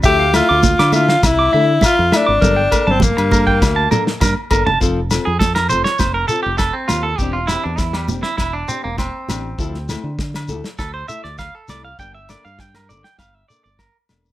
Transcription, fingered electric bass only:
X:1
M:4/4
L:1/16
Q:1/4=100
K:F
V:1 name="Fingered electric bass" clef=bass
D,,3 D,,2 D,3 C,,2 D,2 z F,, z _A,,, | G,,,2 z G,,,2 G,,3 D,,2 z2 G,, z G,,, F,,, | F,,,3 F,,3 F,,, z F,,,2 z F,,,2 z _E,,2 | E,,,3 E,,3 E,,, z E,,,2 z E,,,2 z A,,,2 |
D,,3 D,3 D,, z D,,2 z D,,2 z C,,2 | G,,,3 G,,3 G,,, z G,,,2 z G,,,2 z E,,,2 |]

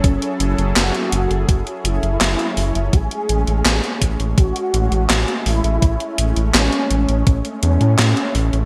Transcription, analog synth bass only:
X:1
M:4/4
L:1/16
Q:1/4=83
K:A
V:1 name="Analog synth bass" clef=bass
F,,, z F,,, F,,, F,,, z F,,, F,,, F,,, z F,,, F,,, F,,, z F,,, F,,, | A,,, z A,,, A,,, A,,, z A,,, A,,, A,,, z A,,, A,,, A,,, z A,,, A,,, | A,,, z A,,, A,,, A,,, z A,,, A,,, A,,, z E,, A,, A,, z A,,, A,,, |]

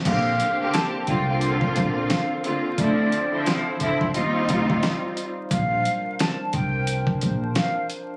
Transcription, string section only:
X:1
M:4/4
L:1/16
Q:"Swing 16ths" 1/4=88
K:Cdor
V:1 name="String section"
[D,B,CG]3 [D,B,CG]3 [D,B,CF] [D,B,CF]6 z [D,B,CF]2 | [D,F,C=E]3 [D,F,CE]3 [D,F,CE]2 [G,C_EF]6 z2 | z16 |]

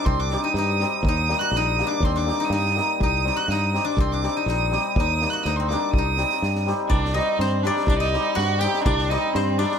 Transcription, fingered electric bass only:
X:1
M:2/4
L:1/8
Q:1/4=123
K:none
V:1 name="Fingered electric bass" clef=bass
C,,2 G,,2 | _E,,2 _B,,,2 | _E,,2 G,,2 | C,,2 G,,2 |
C,,2 _B,,,2 | _E,,2 D,,2 | C,,2 G,,2 | C,,2 G,,2 |
C,,2 G,,2 | C,,2 G,,2 |]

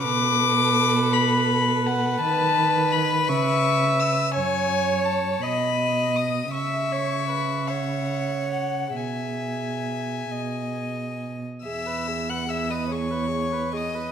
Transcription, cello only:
X:1
M:6/8
L:1/16
Q:3/8=53
K:Bdor
V:1 name="Cello" clef=bass
B,,12 | [K:E] D,6 C,6 | F,,6 B,,6 | C,12 |
B,,6 B,,4- B,, z | E,,12 |]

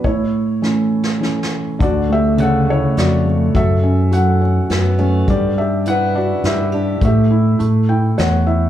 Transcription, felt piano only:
X:1
M:3/4
L:1/8
Q:1/4=103
K:D
V:1 name="Felt piano"
[Ec]4- [Ec] z | [Fd] [Ge] [Af] [Ec] [Fd]2 | [Ae]2 [Af]3 z | [Gd] [Ge] [Bf] [Fd] [Ge]2 |
[Ge]2 z g f e |]
V:2 name="Felt piano"
A,,2 [E,A,C]2 [E,A,C]2 | D, A, C, A,2 A, | F, C F, C F, C | G, D E D E D |
A, E A, E c E |]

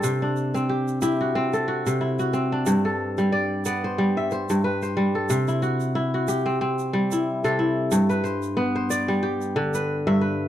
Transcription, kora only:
X:1
M:4/4
L:1/16
Q:"Swing 16ths" 1/4=92
K:Clyd
V:1 name="Kora"
A D3 G2 G F2 A F2 E F2 D- | D A3 d2 d c2 e c2 B c2 A- | A E F3 F G2 C3 E2 A E2- | E B c3 c d2 G3 B2 e B2 |]
V:2 name="Kora" clef=bass
C,2 z C2 z E2 C2 z C,2 z C2 | G,,2 z G,2 z B,2 G,2 z G,,2 z G,2 | C,2 z2 E2 z C2 z G,2 z C,2 z | G,,2 z2 B,2 z G,2 z D,2 z G,,2 z |]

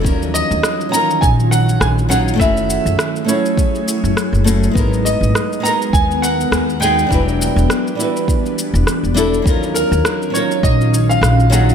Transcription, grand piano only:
X:1
M:4/4
L:1/16
Q:"Swing 16ths" 1/4=102
K:D#m
V:1 name="Grand piano"
z2 d4 a2 g2 f2 g2 f2 | =e6 c8 z2 | z2 d4 a2 g2 f4 =g2- | =g6 z8 z2 |
z2 A4 c2 d3 e3 f2 |]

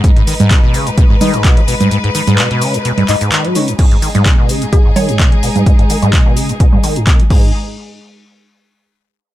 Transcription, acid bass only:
X:1
M:4/4
L:1/16
Q:"Swing 16ths" 1/4=128
K:G#m
V:1 name="Acid bass" clef=bass
G,, G,, D, G,, B,, B,, C, G,, B,, G,, D, G,, B,, G, B,, G,, | G,, G,, D, G,, B,, B,, C, G,, B,, G,, G,, G,, D, F, C, G,, | G,, G,, D, G,, B,, B,, C, G,, B,, G,, D, G,, B,, G, B,, G,, | G,, G,, D, G,, B,, B,, C, G,, B,, G,, D, G,, B,, G, G,,2 |
z16 |]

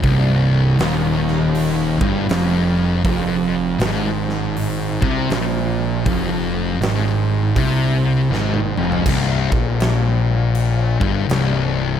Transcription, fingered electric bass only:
X:1
M:4/4
L:1/8
Q:"Swing" 1/4=80
K:Cm
V:1 name="Fingered electric bass" clef=bass
C,,,2 E,,,3 G,,, F,,,2 | F,,,2 A,,,3 C,, B,,,2 | F,,,2 A,,,2 C,,2 A,,, F,,, | C,,, B,,,4 G,,, C,,,2 |]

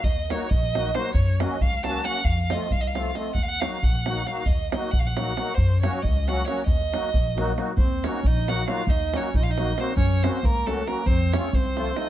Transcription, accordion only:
X:1
M:5/8
L:1/8
Q:1/4=136
K:none
V:1 name="Accordion"
z [_G,_B,_E_G] z [G,B,EG] [G,B,EG] | z [_G,_B,_D_G] z [G,B,DG] [G,B,DG] | z [F,A,CF] z [F,A,CF] [F,A,CF] | z [_G,_B,_E_G] z [G,B,EG] [G,B,EG] |
z [_G,_B,_E_G] z [G,B,EG] [G,B,EG] | z [_G,_B,_D_G] z [G,B,DG] [G,B,DG] | z [_G,_B,_E_G] z [G,B,EG] [G,B,EG] | z [_G,_B,_E_G] z [G,B,EG] [G,B,EG] |
z [_G,_B,_E_G] z [G,B,EG] [G,B,EG] | z [_G,_B,_D_G] z [G,B,DG] [G,B,DG] | z [F,A,CF] z [F,A,CF] [F,A,CF] |]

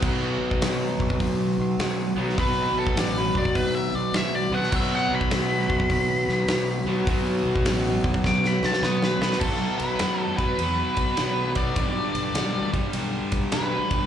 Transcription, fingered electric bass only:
X:1
M:4/4
L:1/8
Q:"Swing" 1/4=102
K:Bm
V:1 name="Fingered electric bass" clef=bass
B,,, B,,, B,,, B,,, B,,, B,,, B,,, B,,, | B,,, B,,, A,,, B,,, B,,, B,,, B,,, B,,, | B,,, B,,, B,,, B,,, B,,, B,,, B,,, B,,, | B,,, B,,, A,,, B,,, B,,, B,,, B,,, B,,, |
B,,, B,,, F,, B,,, E,, B,,, B,,,2 | B,,, B,,, B,,, B,,, B,,, B,,, B,,, B,,, |]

